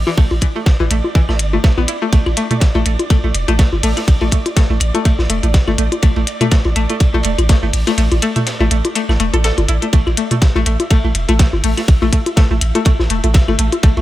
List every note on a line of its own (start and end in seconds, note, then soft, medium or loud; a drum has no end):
0.00 9.94 D5 medium
0.07 0.10 E3 medium
0.07 snare soft
0.07 low bongo medium
0.17 0.28 A1 medium
0.17 0.24 A3 medium
0.17 kick loud
0.17 ride medium
0.31 0.39 A1 medium
0.31 ride soft
0.31 low bongo medium
0.41 0.46 E3 loud
0.41 kick medium
0.41 closed hi-hat medium
0.41 ride medium
0.41 claves medium
0.56 0.60 A3 medium
0.56 low bongo soft
0.66 kick loud
0.66 snare loud
0.66 ride medium
0.80 0.88 A1 medium
0.80 0.83 E3 loud
0.80 low bongo medium
0.91 1.01 A1 loud
0.91 0.97 A3 medium
0.91 closed hi-hat medium
0.91 ride medium
1.04 low bongo medium
1.15 1.19 E3 medium
1.15 kick loud
1.15 ride medium
1.29 1.41 A1 medium
1.29 1.34 A3 medium
1.29 snare soft
1.29 low bongo soft
1.29 claves medium
1.39 1.59 G1 loud
1.39 closed hi-hat medium
1.39 ride medium
1.53 1.56 A3 medium
1.53 low bongo medium
1.64 1.68 A3 medium
1.64 kick loud
1.64 snare loud
1.64 ride medium
1.78 1.86 A1 medium
1.78 1.82 B3 loud
1.78 low bongo medium
1.88 1.94 E4 medium
1.88 closed hi-hat medium
1.88 ride medium
2.02 2.09 A3 medium
2.02 low bongo soft
2.13 2.23 A1 loud
2.13 2.19 A3 medium
2.13 kick loud
2.13 closed hi-hat soft
2.13 ride medium
2.26 2.35 A1 medium
2.26 ride soft
2.26 low bongo medium
2.26 claves medium
2.37 2.43 A3 medium
2.37 closed hi-hat medium
2.37 ride medium
2.51 2.56 A3 medium
2.51 closed hi-hat soft
2.51 mid tom medium
2.51 low bongo soft
2.60 kick loud
2.60 snare loud
2.60 closed hi-hat soft
2.60 ride medium
2.75 2.83 A1 medium
2.75 2.80 A3 loud
2.75 ride soft
2.75 low bongo medium
2.86 2.96 A1 loud
2.86 2.92 A3 medium
2.86 closed hi-hat medium
2.86 ride medium
2.99 closed hi-hat soft
2.99 low bongo medium
3.10 3.16 A3 loud
3.10 kick loud
3.10 closed hi-hat soft
3.10 ride medium
3.10 claves medium
3.24 3.32 A1 medium
3.24 3.29 A3 medium
3.24 low bongo soft
3.35 3.45 E1 medium
3.35 closed hi-hat medium
3.35 ride medium
3.48 3.66 A1 medium
3.48 3.53 A3 loud
3.48 closed hi-hat soft
3.48 ride soft
3.48 low bongo medium
3.59 3.65 A3 medium
3.59 kick loud
3.59 snare loud
3.59 closed hi-hat soft
3.59 ride medium
3.73 3.81 G1 medium
3.73 low bongo medium
3.83 3.94 A1 medium
3.83 3.90 A3 loud
3.83 closed hi-hat medium
3.83 open hi-hat medium
3.96 4.02 A3 medium
3.96 snare medium
3.96 closed hi-hat soft
3.96 low bongo soft
3.96 claves medium
4.08 4.18 A1 loud
4.08 kick loud
4.08 closed hi-hat soft
4.08 ride medium
4.21 4.30 A1 medium
4.21 4.26 A3 loud
4.21 ride soft
4.21 low bongo medium
4.31 4.38 A3 medium
4.31 kick medium
4.31 closed hi-hat medium
4.31 ride medium
4.46 closed hi-hat soft
4.46 low bongo medium
4.56 4.63 A3 loud
4.56 kick loud
4.56 snare loud
4.56 closed hi-hat soft
4.56 ride medium
4.70 4.78 A1 medium
4.70 4.75 A3 medium
4.70 low bongo soft
4.80 4.91 A1 loud
4.80 closed hi-hat medium
4.80 ride medium
4.80 claves medium
4.94 4.99 A3 loud
4.94 closed hi-hat soft
4.94 low bongo medium
5.05 5.12 A3 medium
5.05 kick loud
5.05 closed hi-hat soft
5.05 ride medium
5.19 5.27 A1 medium
5.19 snare medium
5.19 low bongo medium
5.30 5.40 E1 medium
5.30 5.36 A3 loud
5.30 closed hi-hat medium
5.30 ride medium
5.43 5.61 A1 medium
5.43 5.48 A3 medium
5.43 closed hi-hat soft
5.43 low bongo soft
5.54 kick loud
5.54 snare loud
5.54 closed hi-hat medium
5.54 ride medium
5.68 5.76 G1 medium
5.68 5.73 A3 loud
5.68 low bongo medium
5.68 claves medium
5.78 5.89 A1 medium
5.78 5.85 A3 medium
5.78 closed hi-hat medium
5.78 ride medium
5.92 closed hi-hat soft
5.92 low bongo medium
6.02 6.13 A1 medium
6.02 6.09 A3 loud
6.02 kick loud
6.02 closed hi-hat medium
6.02 ride medium
6.16 6.25 A1 medium
6.16 6.21 A3 medium
6.16 ride soft
6.16 low bongo soft
6.27 closed hi-hat medium
6.27 ride medium
6.41 6.46 A3 loud
6.41 closed hi-hat soft
6.41 mid tom medium
6.41 low bongo medium
6.51 6.58 A3 medium
6.51 kick loud
6.51 snare loud
6.51 closed hi-hat soft
6.51 ride medium
6.51 claves medium
6.64 6.74 A1 medium
6.64 ride soft
6.64 low bongo medium
6.76 6.86 A1 loud
6.76 6.82 A3 loud
6.76 closed hi-hat medium
6.76 ride medium
6.90 6.95 A3 medium
6.90 closed hi-hat soft
6.90 low bongo soft
7.00 kick loud
7.00 closed hi-hat medium
7.00 ride medium
7.14 7.22 A1 medium
7.14 7.19 A3 loud
7.14 low bongo medium
7.23 7.35 E1 medium
7.23 7.31 A3 medium
7.23 closed hi-hat medium
7.23 ride medium
7.38 7.56 A1 medium
7.38 closed hi-hat soft
7.38 ride soft
7.38 low bongo medium
7.38 claves medium
7.49 7.55 A3 medium
7.49 kick loud
7.49 snare loud
7.49 closed hi-hat medium
7.49 ride medium
7.63 7.71 G1 medium
7.63 7.68 A3 medium
7.63 low bongo soft
7.73 7.84 A1 medium
7.73 closed hi-hat medium
7.73 open hi-hat medium
7.87 7.92 A3 loud
7.87 snare medium
7.87 closed hi-hat soft
7.87 low bongo medium
7.98 8.08 A1 loud
7.98 8.04 A3 medium
7.98 closed hi-hat medium
7.98 ride medium
8.12 8.20 A1 medium
8.12 closed hi-hat soft
8.12 ride soft
8.12 low bongo medium
8.22 8.29 A3 loud
8.22 closed hi-hat medium
8.22 ride medium
8.22 claves medium
8.36 8.41 A3 medium
8.36 closed hi-hat soft
8.36 mid tom medium
8.36 low bongo soft
8.47 snare loud
8.47 closed hi-hat medium
8.47 ride medium
8.60 8.69 A1 medium
8.60 8.65 A3 loud
8.60 low bongo medium
8.71 8.82 A1 loud
8.71 8.77 A3 medium
8.71 closed hi-hat medium
8.71 ride medium
8.85 closed hi-hat soft
8.85 low bongo medium
8.95 9.02 A3 loud
8.95 closed hi-hat soft
8.95 ride medium
9.09 9.17 A1 medium
9.09 9.14 A3 medium
9.09 snare medium
9.09 low bongo soft
9.09 claves medium
9.20 9.30 E1 medium
9.20 9.24 A3 loud
9.20 closed hi-hat medium
9.20 ride medium
9.34 9.51 A1 medium
9.34 9.37 A4 medium
9.34 closed hi-hat soft
9.34 low bongo medium
9.44 9.54 A4 medium
9.44 snare loud
9.44 closed hi-hat medium
9.44 ride medium
9.58 9.66 G1 medium
9.58 closed hi-hat soft
9.58 low bongo medium
9.69 9.79 A1 medium
9.69 9.75 E4 medium
9.69 closed hi-hat medium
9.69 ride medium
9.82 9.87 A3 medium
9.82 closed hi-hat soft
9.82 low bongo soft
9.93 10.04 A1 loud
9.93 9.99 A3 medium
9.93 14.02 E5 medium
9.93 kick loud
9.93 closed hi-hat medium
9.93 ride medium
10.07 10.15 A1 medium
10.07 ride soft
10.07 low bongo medium
10.07 claves medium
10.17 10.24 A3 loud
10.17 closed hi-hat medium
10.17 ride medium
10.31 10.36 A3 medium
10.31 closed hi-hat soft
10.31 mid tom medium
10.31 low bongo soft
10.42 kick loud
10.42 snare loud
10.42 closed hi-hat medium
10.42 ride medium
10.56 10.64 A1 loud
10.56 10.61 A3 loud
10.56 ride soft
10.56 low bongo medium
10.66 10.77 A1 loud
10.66 10.73 A3 medium
10.66 closed hi-hat medium
10.66 ride medium
10.80 closed hi-hat soft
10.80 low bongo medium
10.91 10.97 A3 loud
10.91 kick loud
10.91 closed hi-hat medium
10.91 ride medium
10.91 claves medium
11.04 11.13 A1 medium
11.04 11.09 A3 medium
11.04 low bongo soft
11.15 11.25 E1 medium
11.15 closed hi-hat medium
11.15 ride medium
11.29 11.47 A1 medium
11.29 11.34 A3 loud
11.29 closed hi-hat soft
11.29 ride soft
11.29 low bongo medium
11.39 11.46 A3 medium
11.39 kick loud
11.39 snare loud
11.39 closed hi-hat medium
11.39 ride medium
11.53 11.61 G1 medium
11.53 low bongo medium
11.64 11.74 A1 medium
11.64 11.70 A3 loud
11.64 closed hi-hat medium
11.64 open hi-hat medium
11.77 11.82 A3 medium
11.77 snare soft
11.77 closed hi-hat soft
11.77 low bongo soft
11.77 claves medium
11.88 11.99 A1 medium
11.88 kick loud
11.88 closed hi-hat soft
11.88 ride medium
12.02 12.10 A1 medium
12.02 12.07 A3 loud
12.02 ride soft
12.02 low bongo medium
12.13 12.19 A3 medium
12.13 kick medium
12.13 closed hi-hat medium
12.13 ride medium
12.26 closed hi-hat soft
12.26 low bongo medium
12.36 12.43 A3 loud
12.36 kick loud
12.36 snare loud
12.36 closed hi-hat soft
12.36 ride medium
12.51 12.59 A1 medium
12.51 12.56 A3 medium
12.51 low bongo soft
12.61 12.72 A1 loud
12.61 closed hi-hat medium
12.61 ride medium
12.61 claves medium
12.75 12.80 A3 loud
12.75 closed hi-hat soft
12.75 low bongo medium
12.85 12.92 A3 medium
12.85 kick loud
12.85 closed hi-hat soft
12.85 ride medium
13.00 13.08 A1 medium
13.00 snare soft
13.00 low bongo medium
13.10 13.21 E1 medium
13.10 13.16 A3 loud
13.10 closed hi-hat medium
13.10 ride medium
13.24 13.42 A1 medium
13.24 13.29 A3 medium
13.24 closed hi-hat soft
13.24 low bongo soft
13.34 kick loud
13.34 snare loud
13.34 closed hi-hat medium
13.34 ride medium
13.48 13.56 G1 medium
13.48 13.53 A3 loud
13.48 low bongo medium
13.48 claves medium
13.59 13.69 A1 medium
13.59 13.65 A3 medium
13.59 closed hi-hat medium
13.59 ride medium
13.72 closed hi-hat soft
13.72 low bongo medium
13.83 13.94 A1 loud
13.83 13.90 A3 medium
13.83 kick loud
13.83 closed hi-hat soft
13.83 ride medium
13.97 14.02 A1 medium
13.97 14.02 A3 medium
13.97 ride soft
13.97 low bongo soft